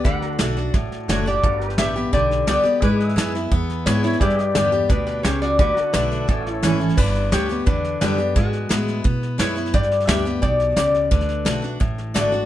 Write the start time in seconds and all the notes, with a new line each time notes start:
0.04 D2 D3 G4 A4 B4 D5 F#5, kick, snare
0.22 F#4, snare
0.30 A4
0.39 B1 D3 A3 D4 F#4, snare, hi-hat pedal
0.57 D4 F#4, snare
0.74 A1 A2, kick, snare
0.91 muted upright bass stroke, snare
1.08 F#1 D3 A3 D4 F#4 C#5, snare, hi-hat pedal
1.26 D4 F#4 G4 D5, snare
1.43 G1 G2 F#4 A4 D5, kick, snare
1.61 G4, snare
1.69 B4, snare
1.77 A1 D3 G3 B3 G4 E5, snare, hi-hat pedal
1.96 B3 G4, snare
2.13 B1 D3 G4 D5, kick, snare
2.31 snare
2.47 C#2 D3 G3 B3 G4 D5, snare, hi-hat pedal
2.64 B3 G4, muted upright bass stroke, snare
2.81 G#2 G#3 E4 G#4 B4 D5, kick, snare
3.00 snare
3.07 E5, snare
3.16 F#2 G#3 B3 E4, snare, hi-hat pedal
3.35 B3 E4, snare
3.52 E2 B3, kick, snare
3.70 snare
3.86 G#2 G#3 B3 E4 C#5, snare, hi-hat pedal
4.03 B3 E4 C#5, snare
4.13 snare
4.20 G2 G4 G#4 B4 D5 E5, kick, snare
4.30 snare
4.39 G4, snare
4.47 D5
4.55 E2 D3 G3 B3 G4 D5, snare, hi-hat pedal
4.72 B3 G4, snare
4.89 D2 B2 D4 B4, kick, snare
5.07 D4 B4, snare
5.23 C#2 C#3 G4 C#5, snare, hi-hat pedal
5.42 F#4 D5, snare
5.59 D2 D3 F#4 G4 B4 D5, kick, snare
5.76 F#4, muted upright bass stroke, snare
5.83 A4
5.93 B1 D3 A3 D4 F#4 B4, snare, hi-hat pedal
6.12 snare
6.28 A1 A2 C#4 F#4 A4 D5, kick, snare
6.47 C#5, snare
6.52 E4
6.63 G#1 E3 A3 C#4 E4 A4, snare, hi-hat pedal
6.79 C#4 E4, snare
6.89 snare
6.97 G1 G2 D4 B4, kick, snare, crash
7.07 snare
7.15 snare
7.32 D2 D3 G3 B3 G4 C#5, snare, hi-hat pedal
7.49 B3 G4, snare
7.66 E2 D3 D4 B4, kick, snare
7.84 snare
8.01 F#2 D3 G3 B3 D4 G4 B4, snare, hi-hat pedal
8.18 B3 G4, snare
8.36 G#2 G#3 B3 F#4, kick, snare
8.53 snare
8.69 A2 G#3 B3 E4, snare, hi-hat pedal
8.88 snare
9.04 B2 B3, kick, snare
9.23 snare
9.38 F#2 G#3 B3 E4 C#5, snare, hi-hat pedal
9.56 B3 E4, snare
9.66 snare
9.74 G2 G4 D5, kick, snare
9.83 snare
9.91 snare
10.00 snare
10.07 D2 D3 G3 B3 G4 E5, snare, hi-hat pedal
10.25 B3 G4, snare
10.42 B1 B2 G4 D5, kick, snare
10.60 snare
10.76 C#2 C#3 G4 D5, snare, hi-hat pedal
10.94 snare
11.11 D2 D3 D4 B4, kick, snare
11.21 snare
11.29 snare
11.45 B1 D3 A3 D4 F#4, snare, hi-hat pedal
11.62 D4 F#4, snare
11.80 A1 A2, kick, snare
11.98 snare
12.14 G#1 D3 A3 D4 F#4 D5, snare, hi-hat pedal
12.32 D4 F#4, snare